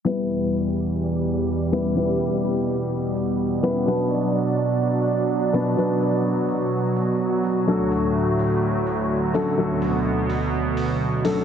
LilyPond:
<<
  \new Staff \with { instrumentName = "Grand piano" } { \time 4/4 \key e \minor \tempo 4 = 126 <g b e' b'>2.~ <g b e' b'>8 <g b e' b'>8 | <g b e' b'>2.~ <g b e' b'>8 <g b e' b'>8 | <b, fis b d' b'>2.~ <b, fis b d' b'>8 <b, fis b d' b'>8 | <b, fis b d' b'>2.~ <b, fis b d' b'>8 r8 |
<fis a d' a'>2.~ <fis a d' a'>8 <fis a d' a'>8 | <fis a d' a'>2.~ <fis a d' a'>8 <fis a d' a'>8 | }
  \new Staff \with { instrumentName = "Analog synth pad" } { \clef bass \time 4/4 \key e \minor << { <b, g>1~ | <b, g>1 | <fis d'>1~ | <fis d'>1 |
a,1 | b,1 | } \\ { e,1~ | e,1 | r1 | r1 |
d,1~ | d,1 | } >> }
  \new DrumStaff \with { instrumentName = "Drums" } \drummode { \time 4/4 r8 hho8 r8 hho8 r8 hho8 r8 hho8 | r8 hho8 r8 hho8 r8 hho8 r8 hho8 | r8 hho8 r8 hho8 r8 hho8 r8 hho8 | r8 hho8 r8 hho8 r8 hho8 r8 hho8 |
r8 hho8 r8 hho8 r8 hho8 r8 hho8 | r8 hho8 r8 hho8 r8 hho8 r8 hho8 | }
>>